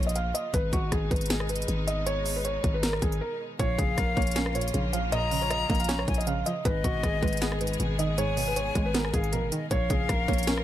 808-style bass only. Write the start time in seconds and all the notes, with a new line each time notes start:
Already playing: A#1
0.54 G#1
0.73 G#1
0.92 G#1
1.11 G#1
1.68 G#1
2.64 G#1
3.02 G#1
3.59 A#1
3.79 A#1
3.98 A#1
4.17 A#1
4.74 A#1
5.70 A#1
6.08 A#1
6.65 G#1
6.84 G#1
7.03 G#1
7.23 G#1
7.80 G#1
8.75 G#1
9.14 G#1
9.33 A#1
9.43 G#1
9.71 A#1
9.90 A#1
10.09 A#1
10.28 A#1